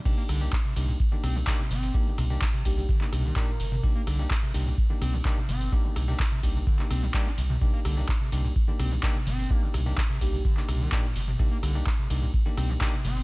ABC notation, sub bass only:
X:1
M:4/4
L:1/8
Q:1/4=127
K:Cm
V:1 name="Sub bass" clef=bass
z C,, z C,, z C,, z G,,, | z C,, z C,, z C,, z G,,, | z C,, z C,, z C,, z G,,, | z C,, z C,, z C,, z C,, |
z C,, z C,, z C,, z G,,, | z C,, z C,, z C,, z G,,, | z C,, z C,, z C,, z G,,, |]